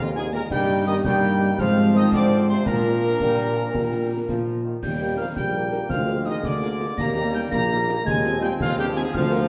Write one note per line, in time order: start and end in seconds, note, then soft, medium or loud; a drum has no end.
0.00 0.42 D#2 loud
0.00 0.13 F2 loud
0.00 0.47 D3 medium
0.00 0.47 G#3 medium
0.14 0.31 G#2 medium
0.14 0.22 A#3 medium
0.14 0.22 D4 medium
0.14 0.22 G#4 medium
0.14 0.24 G#4 loud
0.14 0.34 G#5 loud
0.14 snare medium
0.33 0.41 A#2 loud
0.33 0.40 A#3 medium
0.33 0.40 D4 medium
0.33 0.41 G#4 medium
0.33 0.42 A#4 loud
0.33 0.51 A#5 loud
0.33 snare medium
0.50 0.99 G2 loud
0.50 1.02 D#3 loud
0.50 0.84 G3 loud
0.50 1.02 G3 loud
0.50 1.02 A#3 loud
0.50 1.02 D#4 loud
0.50 1.02 G4 loud
0.50 0.85 G5 loud
0.50 0.85 G6 loud
0.50 concert bass drum medium
0.50 snare medium
0.50 crash soft
0.87 0.96 D#3 loud
0.87 0.96 D#5 loud
0.87 1.04 D#6 loud
1.04 1.53 G2 loud
1.04 1.56 D#3 loud
1.04 1.55 G3 loud
1.04 1.56 G3 loud
1.04 1.56 A#3 medium
1.04 1.56 D#4 medium
1.04 1.56 G4 medium
1.04 1.56 G5 loud
1.04 1.61 G6 loud
1.04 concert bass drum medium
1.04 snare medium
1.40 snare medium
1.58 2.07 G#2 loud
1.58 2.67 F3 loud
1.58 1.97 F3 loud
1.58 2.67 C4 loud
1.58 2.66 F4 loud
1.58 2.68 C5 loud
1.58 1.95 F5 loud
1.58 1.95 F6 loud
1.58 concert bass drum medium
1.58 snare medium
1.77 snare medium
1.95 2.15 D#3 loud
1.95 2.04 D#5 loud
1.95 2.12 D#6 loud
1.95 snare medium
2.12 2.61 G#2 loud
2.12 2.52 D3 loud
2.12 2.47 D5 loud
2.12 2.47 D6 loud
2.12 concert bass drum medium
2.12 snare medium
2.30 snare medium
2.48 2.69 C3 loud
2.48 2.66 C5 loud
2.48 2.65 C6 loud
2.48 snare medium
2.66 3.15 A#2 loud
2.66 4.65 A#2 loud
2.66 3.15 F3 medium
2.66 4.61 D4 loud
2.66 3.15 D4 medium
2.66 4.61 F4 loud
2.66 4.65 A#4 loud
2.66 4.61 A#4 loud
2.66 4.61 A#5 loud
2.66 concert bass drum medium
2.66 snare medium
2.66 crash soft
3.20 3.68 A#2 medium
3.20 3.54 G3 loud
3.20 concert bass drum medium
3.20 snare medium
3.57 3.75 F3 medium
3.57 snare medium
3.74 4.22 A#2 medium
3.74 4.12 G3 loud
3.74 concert bass drum medium
3.74 snare medium
4.28 4.77 A#2 medium
4.28 4.62 F3 medium
4.28 concert bass drum medium
4.28 snare medium
4.65 4.82 D#3 medium
4.81 5.24 D#2 loud
4.81 5.86 G3 medium
4.81 5.17 G3 loud
4.81 6.94 A#3 medium
4.81 5.17 G5 loud
4.81 5.16 G6 loud
4.81 concert bass drum medium
4.81 snare medium
4.81 crash medium
5.01 5.07 A#3 medium
5.01 5.07 D#4 medium
5.01 5.07 A#4 medium
5.17 5.28 F3 loud
5.17 5.25 A#3 medium
5.17 5.25 D#4 medium
5.17 5.25 A#4 medium
5.17 5.27 F5 loud
5.17 5.35 F6 loud
5.36 5.82 A#1 medium
5.36 5.88 G3 loud
5.36 5.87 G5 loud
5.36 5.87 G6 loud
5.36 concert bass drum medium
5.36 snare medium
5.54 5.60 A#3 medium
5.54 5.61 D#4 medium
5.54 5.61 A#4 medium
5.72 5.79 A#3 medium
5.72 5.79 D#4 medium
5.72 5.79 A#4 medium
5.72 snare medium
5.89 6.36 D2 loud
5.89 6.24 F3 loud
5.89 6.99 G#3 loud
5.89 6.28 F5 loud
5.89 6.27 F6 loud
5.89 concert bass drum medium
5.89 snare medium
6.08 6.15 A#3 medium
6.08 6.15 F4 medium
6.08 6.15 G#4 medium
6.08 snare medium
6.26 6.43 D#3 loud
6.26 6.33 A#3 medium
6.26 6.33 F4 medium
6.26 6.33 G#4 medium
6.26 6.44 D#5 loud
6.26 6.44 D#6 loud
6.26 snare medium
6.42 6.90 D2 loud
6.42 6.98 D3 loud
6.42 6.99 D5 loud
6.42 6.95 D6 loud
6.42 concert bass drum medium
6.42 snare medium
6.62 6.70 A#3 medium
6.62 6.70 F4 medium
6.62 6.69 G#4 medium
6.62 snare medium
6.80 6.88 A#3 medium
6.80 6.88 F4 medium
6.80 6.88 G#4 medium
6.80 snare medium
6.97 7.43 D#2 loud
6.97 8.03 G3 loud
6.97 8.02 A#3 loud
6.97 7.33 A#3 loud
6.97 7.35 A#5 loud
6.97 7.31 A#6 loud
6.97 concert bass drum medium
6.97 snare medium
6.97 crash soft
7.17 7.23 A#3 medium
7.17 7.23 D#4 medium
7.17 7.23 G4 medium
7.34 7.42 G3 loud
7.34 7.41 A#3 medium
7.34 7.41 D#4 medium
7.34 7.41 G4 medium
7.34 7.53 G5 loud
7.34 7.40 G6 loud
7.51 7.97 A#1 loud
7.51 8.07 A#3 loud
7.51 8.03 A#5 loud
7.51 8.02 A#6 loud
7.51 concert bass drum medium
7.51 snare medium
7.71 7.78 A#3 medium
7.71 7.78 D#4 medium
7.71 7.78 G4 medium
7.89 7.96 A#3 medium
7.89 7.95 D#4 medium
7.89 7.96 G4 medium
7.89 snare medium
8.05 8.51 D#2 loud
8.05 9.48 F3 loud
8.05 8.41 G#3 loud
8.05 9.15 C4 loud
8.05 8.40 G#5 loud
8.05 8.40 G#6 loud
8.05 concert bass drum loud
8.05 snare medium
8.24 8.31 C4 medium
8.24 8.31 F4 medium
8.24 8.31 G#4 medium
8.24 snare medium
8.42 8.50 G3 loud
8.42 8.49 C4 medium
8.42 8.49 F4 medium
8.42 8.49 G#4 medium
8.42 8.51 G5 loud
8.42 8.48 G6 loud
8.42 snare medium
8.59 9.05 D#2 loud
8.59 8.68 F2 loud
8.59 8.78 F4 loud
8.59 8.78 F5 loud
8.59 concert bass drum medium
8.59 snare medium
8.78 8.96 G2 loud
8.78 8.85 C4 loud
8.78 8.85 F4 loud
8.78 8.96 G4 loud
8.78 8.85 G#4 medium
8.78 8.86 G5 loud
8.78 snare medium
8.95 9.06 G#2 loud
8.95 9.03 C4 loud
8.95 9.02 F4 loud
8.95 9.02 G#4 loud
8.95 9.15 G#4 loud
8.95 9.02 G#5 loud
8.95 snare medium
9.14 9.48 D2 loud
9.14 9.48 F3 loud
9.14 9.48 A#3 loud
9.14 9.48 F5 loud
9.14 9.48 F6 loud
9.14 concert bass drum loud
9.14 snare medium
9.14 crash soft
9.32 9.39 A#3 medium
9.32 9.39 F4 loud
9.32 9.39 A#4 loud